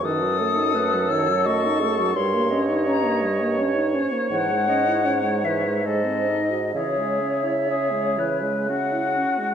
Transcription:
0.03 2.15 F#2 medium
0.03 0.23 D#3 medium
0.03 2.11 A4 medium
0.03 0.40 B4 medium
0.03 1.12 D#6 medium
0.21 0.42 F#3 soft
0.39 0.58 A3 soft
0.39 0.76 A4 medium
0.56 0.76 D#4 soft
0.74 0.96 A3 soft
0.74 1.11 B4 medium
0.94 1.13 F#3 soft
1.10 1.30 D#3 medium
1.10 1.47 C#5 medium
1.10 1.48 E6 medium
1.29 1.48 F#3 medium
1.46 1.67 A3 medium
1.46 1.81 D#5 medium
1.46 2.18 C#6 medium
1.65 1.84 D#4 soft
1.80 2.01 A3 soft
1.80 2.16 G#4 medium
1.99 2.16 F#3 soft
2.15 4.00 G2 medium
2.15 2.37 G3 medium
2.15 2.50 A#4 medium
2.15 5.82 C#5 medium
2.15 2.62 C6 medium
2.35 2.54 A#3 soft
2.50 2.71 C#4 soft
2.50 3.59 D#5 medium
2.70 2.88 D#4 soft
2.87 3.06 C#4 medium
2.87 3.19 A#5 medium
3.05 3.23 A#3 soft
3.22 3.42 G3 medium
3.41 3.60 A#3 soft
3.58 3.77 C#4 medium
3.58 3.96 C#5 medium
3.75 3.96 D#4 soft
3.95 4.14 C#4 medium
3.95 4.31 C5 medium
4.13 4.31 A#3 soft
4.31 6.71 G#2 medium
4.31 4.52 E3 medium
4.31 4.67 C#5 medium
4.31 5.46 F#5 medium
4.51 4.70 G#3 soft
4.68 4.89 C#4 soft
4.68 5.07 D#5 medium
4.87 5.07 E4 soft
5.05 5.25 C#4 soft
5.05 5.47 C#5 medium
5.24 5.46 G#3 soft
5.44 5.66 E3 soft
5.44 5.88 B4 soft
5.44 5.87 E5 medium
5.64 5.84 G#3 soft
5.85 6.07 G#3 soft
5.85 6.41 A4 soft
5.85 6.31 C5 soft
5.85 6.75 D#5 medium
6.06 6.29 C4 soft
6.27 6.52 D#4 soft
6.27 6.62 D#5 soft
6.50 6.74 F#4 soft
6.74 9.20 C#3 soft
6.74 7.00 E3 soft
6.74 7.57 G#4 soft
6.74 8.40 C#5 medium
6.74 9.14 E5 medium
6.98 7.22 G#3 soft
7.21 7.46 C#4 soft
7.44 7.70 E4 soft
7.69 7.93 C#4 soft
7.69 8.20 G#4 soft
7.92 8.20 G#3 soft
8.18 8.44 E3 soft
8.18 8.69 B4 medium
8.43 8.71 G#3 soft
8.69 8.95 C#4 soft
8.69 9.54 F#4 medium
8.69 9.54 F#5 medium
8.93 9.18 E4 soft
9.16 9.40 C#4 soft
9.39 9.54 G#3 soft

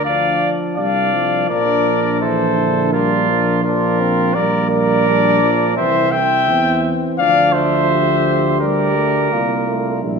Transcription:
0.00 0.50 D2 medium
0.04 0.80 F3 medium
0.04 1.46 D4 medium
0.04 0.51 D5 medium
0.04 0.51 F5 medium
0.76 1.46 C2 medium
0.76 1.15 G3 medium
0.76 1.46 D5 medium
0.76 1.45 F5 medium
1.14 2.22 F3 medium
1.49 4.31 A#1 medium
1.49 2.24 D4 medium
1.49 2.20 A#4 medium
1.49 2.19 D5 loud
2.20 2.59 E3 medium
2.20 2.95 E4 medium
2.20 2.92 A4 medium
2.20 2.94 C5 medium
2.58 2.95 D3 medium
2.93 3.31 G3 medium
2.93 3.64 D4 medium
2.93 3.63 F4 medium
2.93 3.63 A#4 medium
3.29 3.65 F3 medium
3.64 4.37 F3 medium
3.64 4.02 D4 medium
3.64 4.36 F4 medium
3.64 4.36 A#4 medium
4.00 4.36 C4 medium
4.34 5.75 A#1 medium
4.34 5.07 G3 medium
4.34 5.09 A#3 medium
4.34 4.69 A#4 medium
4.34 4.69 D5 loud
4.70 5.75 A#4 medium
4.70 5.75 D5 loud
5.07 5.42 G3 medium
5.07 5.79 D4 medium
5.42 5.77 F3 medium
5.76 6.51 C2 medium
5.76 6.23 E3 medium
5.76 6.24 C4 medium
5.76 6.12 C5 medium
5.76 6.13 E5 medium
6.12 6.90 E5 medium
6.12 6.91 G5 loud
6.49 6.95 E2 medium
6.49 7.21 E3 medium
6.49 7.22 C4 medium
7.18 9.28 D2 medium
7.18 8.63 F3 medium
7.18 7.90 D4 medium
7.18 7.54 D5 medium
7.18 7.52 F5 loud
7.53 8.60 C5 medium
7.53 8.59 E5 medium
7.91 9.34 G4 medium
8.60 8.97 G3 medium
8.60 10.00 A#4 medium
8.60 10.00 D5 medium
8.96 9.34 A3 medium
9.32 10.05 C2 medium
9.32 9.69 A#3 medium
9.32 10.03 F4 medium
9.68 10.06 A3 medium
10.03 10.19 A#1 medium
10.03 10.19 G3 medium
10.03 10.19 E4 medium

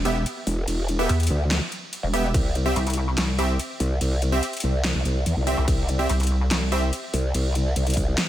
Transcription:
0.00 0.24 E1 loud
0.05 0.17 B3 medium
0.05 0.17 G4 medium
0.05 0.17 E5 loud
0.05 closed hi-hat medium
0.26 closed hi-hat medium
0.26 crash soft
0.47 0.66 E1 loud
0.47 open hi-hat medium
0.68 1.08 E1 medium
0.68 closed hi-hat medium
0.68 crash medium
0.89 closed hi-hat medium
0.99 1.11 B3 medium
0.99 1.11 G4 medium
0.99 1.11 E5 loud
1.09 1.29 E2 loud
1.09 closed hi-hat medium
1.09 crash soft
1.20 closed hi-hat soft
1.23 closed hi-hat medium
1.27 1.60 D2 loud
1.27 closed hi-hat medium
1.51 snare loud
1.51 closed hi-hat medium
1.51 crash medium
1.72 closed hi-hat medium
1.93 closed hi-hat medium
1.93 crash soft
2.03 2.33 E1 loud
2.13 2.26 B3 loud
2.13 2.26 G4 medium
2.13 2.26 E5 loud
2.13 open hi-hat medium
2.34 2.74 C2 loud
2.34 kick loud
2.34 closed hi-hat medium
2.34 crash medium
2.55 closed hi-hat soft
2.66 2.78 C4 medium
2.66 2.78 G4 medium
2.66 2.78 E5 medium
2.76 3.16 C2 loud
2.76 closed hi-hat medium
2.76 crash soft
2.87 closed hi-hat soft
2.90 closed hi-hat medium
2.93 closed hi-hat medium
3.18 3.58 C2 loud
3.18 snare loud
3.18 closed hi-hat medium
3.18 crash medium
3.39 3.51 C4 medium
3.39 3.51 G4 medium
3.39 3.51 E5 medium
3.39 closed hi-hat medium
3.59 closed hi-hat medium
3.59 crash soft
3.80 3.99 C2 loud
3.80 open hi-hat medium
4.01 4.41 C2 loud
4.01 closed hi-hat medium
4.01 crash medium
4.22 closed hi-hat medium
4.32 4.44 C4 medium
4.32 4.44 G4 medium
4.32 4.44 E5 medium
4.43 closed hi-hat medium
4.43 crash soft
4.53 closed hi-hat soft
4.57 closed hi-hat medium
4.60 4.93 C2 loud
4.60 closed hi-hat medium
4.84 snare loud
4.84 closed hi-hat medium
4.84 crash medium
4.95 5.04 C2 loud
5.05 5.24 C2 loud
5.05 closed hi-hat medium
5.26 5.35 E2 loud
5.26 closed hi-hat medium
5.26 crash soft
5.37 5.56 C2 loud
5.47 5.59 C4 loud
5.47 5.59 G4 loud
5.47 5.59 E5 loud
5.47 open hi-hat medium
5.57 5.66 C2 loud
5.68 6.08 C2 loud
5.68 kick loud
5.68 closed hi-hat medium
5.68 crash medium
5.89 closed hi-hat medium
5.99 6.11 C4 medium
5.99 6.11 G4 medium
5.99 6.11 E5 medium
6.09 6.49 C2 medium
6.09 closed hi-hat medium
6.09 crash soft
6.20 closed hi-hat soft
6.23 closed hi-hat medium
6.27 closed hi-hat medium
6.51 6.91 C2 loud
6.51 snare loud
6.51 closed hi-hat medium
6.51 crash medium
6.72 6.84 C4 medium
6.72 6.84 G4 medium
6.72 6.84 E5 loud
6.72 closed hi-hat medium
6.93 closed hi-hat medium
6.93 crash soft
7.14 7.33 C2 loud
7.14 open hi-hat medium
7.34 7.74 C2 loud
7.34 closed hi-hat medium
7.34 crash medium
7.55 closed hi-hat medium
7.76 8.16 C2 loud
7.76 closed hi-hat medium
7.76 crash soft
7.87 closed hi-hat soft
7.90 closed hi-hat medium
7.93 kick medium
7.93 closed hi-hat medium
7.93 open hi-hat medium
8.18 snare loud
8.18 closed hi-hat medium
8.18 crash medium

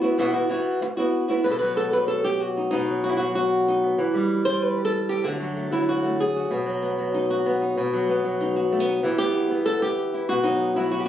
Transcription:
0.02 0.18 B3 soft
0.02 0.18 E4 soft
0.02 0.17 F#4 medium
0.18 0.33 B2 medium
0.18 0.34 E3 medium
0.18 0.34 B3 medium
0.18 0.33 E4 medium
0.18 0.32 F#4 medium
0.33 0.49 B3 soft
0.33 0.50 E4 soft
0.33 0.49 F#4 medium
0.49 0.81 E3 medium
0.49 0.81 B3 medium
0.49 0.82 E4 medium
0.49 0.82 F#4 medium
0.82 muted nylon-string guitar stroke medium
0.97 1.29 B3 soft
0.97 1.28 E4 soft
0.97 1.27 F#4 medium
1.28 1.45 B3 soft
1.28 1.45 E4 medium
1.28 1.44 F#4 medium
1.44 2.71 B2 medium
1.44 1.51 B4 loud
1.51 1.58 A4 medium
1.59 1.92 F#3 medium
1.59 1.76 B4 loud
1.77 1.93 A4 medium
1.93 2.70 F#3 medium
1.93 2.07 B4 medium
2.08 2.24 A4 loud
2.24 2.40 G4 medium
2.40 3.03 F#4 medium
2.57 2.70 D#4 soft
2.71 3.98 B2 medium
2.71 3.09 D#4 medium
2.88 3.18 F#3 medium
3.04 3.16 F#4 medium
3.09 3.17 E4 medium
3.17 3.96 F#3 medium
3.17 3.34 F#4 medium
3.35 3.98 F#4 medium
3.68 3.99 D#4 medium
3.83 3.97 B3 soft
3.98 5.23 E3 medium
4.14 4.45 G3 medium
4.45 5.23 G3 medium
4.45 4.62 C5 loud
4.62 4.84 B4 loud
4.77 5.08 G4 soft
4.85 5.24 A4 medium
5.09 5.25 G4 medium
5.24 6.49 D3 medium
5.24 5.40 F#3 soft
5.24 5.55 A3 soft
5.24 5.87 F#4 medium
5.40 5.71 F#3 medium
5.56 6.03 A3 soft
5.71 6.66 F#3 medium
5.71 6.20 E4 medium
5.89 6.20 F#4 medium
6.04 6.51 A3 soft
6.20 6.51 G#4 medium
6.36 7.14 F#4 soft
6.51 7.76 B2 medium
6.66 6.98 F#3 medium
6.83 7.46 B3 medium
6.98 7.75 F#3 medium
7.14 7.61 D#4 medium
7.30 8.55 F#4 medium
7.46 8.09 B3 medium
7.62 7.76 D#4 medium
7.78 9.04 B2 medium
7.93 8.23 F#3 medium
8.09 8.72 B3 medium
8.24 9.02 F#3 medium
8.41 8.87 D#4 medium
8.56 9.04 F#4 medium
8.72 8.80 A3 medium
8.80 9.03 B3 medium
8.88 9.02 D#4 medium
9.03 10.30 E3 medium
9.03 9.19 B3 medium
9.03 9.34 E4 medium
9.03 9.17 G4 soft
9.18 9.50 B3 medium
9.18 9.65 G4 loud
9.35 10.13 E4 soft
9.51 11.08 B3 medium
9.66 9.82 A4 loud
9.82 10.29 G4 loud
10.14 10.28 E4 soft
10.29 11.08 B2 medium
10.29 10.77 F#4 medium
10.44 10.76 F#3 medium
10.44 10.76 D#4 loud
10.76 11.08 F#3 medium
10.76 10.92 E4 medium
10.91 11.04 F#4 medium
11.00 11.07 G4 medium

